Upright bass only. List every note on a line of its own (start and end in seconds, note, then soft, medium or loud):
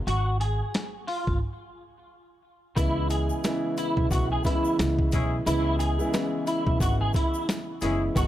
0.07 0.59 G#1 loud
1.27 1.38 G#1 medium
2.77 3.29 C#2 loud
3.97 4.08 B1 medium
4.11 4.37 B1 loud
4.79 5.05 C#2 medium
5.13 5.39 B1 loud
5.46 5.99 C#2 loud
6.67 6.78 B1 medium
6.80 7.07 G#1 loud
7.82 8.08 F#1 medium
8.16 8.27 G#1 loud